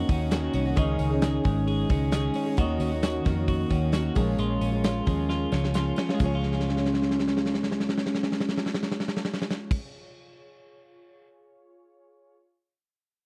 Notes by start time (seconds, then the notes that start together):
Already playing: D#3 A#3 C#4 F#4 C#5 D#5
0.09 D#2 D#3 A#3 C#4 F#4, kick, hi-hat pedal, open hi-hat, tambourine
0.31 D#3 A#3 C#4 F#4, snare, hi-hat pedal, open hi-hat, tambourine
0.53 C2 C#4, hi-hat pedal, open hi-hat, tambourine
0.65 A#3 C#4 F#4
0.75 C#2 C#3 D#3 G#3 C#4 D#4 G#4 C#5 D#5, kick, hi-hat pedal, open hi-hat, tambourine
0.99 C#2 C#4, hi-hat pedal, open hi-hat, tambourine
1.10 C#4 D#4 G#4
1.22 G#4, snare, hi-hat pedal, open hi-hat, tambourine
1.44 G#1 G#3 C#4 D#4 G#4, kick, hi-hat pedal, open hi-hat
1.68 G#4, hi-hat pedal, open hi-hat, tambourine
1.89 C#2 G#3 C#4 D#4 G#4, kick, hi-hat pedal, open hi-hat, tambourine
2.12 G#3 C#4 D#4 G#4, snare, hi-hat pedal, open hi-hat, tambourine
2.34 C#4, hi-hat pedal, open hi-hat, tambourine
2.46 C#4 D#4 G#4
2.57 D#2 D#3 A#3 C#4 F#4 C#5 D#5, kick, hi-hat pedal, open hi-hat, tambourine
2.80 D#2 C#4, hi-hat pedal, open hi-hat, tambourine
2.91 A#3 C#4 F#4
3.03 F#4, snare, hi-hat pedal, open hi-hat, tambourine
3.25 F2 D#3 A#3 C#4 F#4, kick, snare, hi-hat pedal, open hi-hat
3.48 F#4, kick, hi-hat pedal, open hi-hat, tambourine
3.69 D#2 D#3 A#3 C#4 F#4, kick, hi-hat pedal, open hi-hat, tambourine
3.92 D#3 A#3 C#4 F#4, snare, hi-hat pedal, open hi-hat, tambourine
4.15 A#1 A#2 F3 G#3 C#4 F4 G#4 A#4 C#5, kick, hi-hat pedal, open hi-hat, tambourine
4.38 A#1 G#3 F4, hi-hat pedal, open hi-hat, tambourine
4.61 A#1 C#4, hi-hat pedal, open hi-hat, tambourine
4.72 G#3 C#4 F4
4.84 F4, snare, hi-hat pedal, open hi-hat, tambourine
5.05 D#2 F3 G#3 C#4 F4, kick, hi-hat pedal, open hi-hat, tambourine
5.29 F4, snare, tambourine
5.52 C#2 F3 G#3 C#4 F4, snare, tambourine
5.64 snare
5.74 F3 G#3 C#4 F4, snare, tambourine
5.96 C#4, snare, tambourine
6.09 G#3 C#4 F4, snare
6.14 C#3 G#3 F4
6.20 C#2 F3 G#3 G#4, kick, crash, tambourine
6.24 C#4 F4 C#5
6.35 F4
6.43 snare
6.52 snare
6.60 snare
6.69 snare
6.77 snare
6.85 snare
6.94 snare
7.02 snare
7.11 snare
7.19 snare
7.28 snare
7.37 snare
7.46 snare
7.54 snare
7.63 snare
7.71 snare
7.80 snare
7.89 snare
7.98 snare
8.06 snare
8.15 snare
8.23 snare
8.32 snare
8.40 snare
8.49 snare
8.57 snare
8.66 snare
8.74 snare
8.83 snare
8.92 snare
9.00 snare
9.08 snare
9.17 snare
9.25 snare
9.34 snare
9.42 snare
9.51 snare
9.71 kick, crash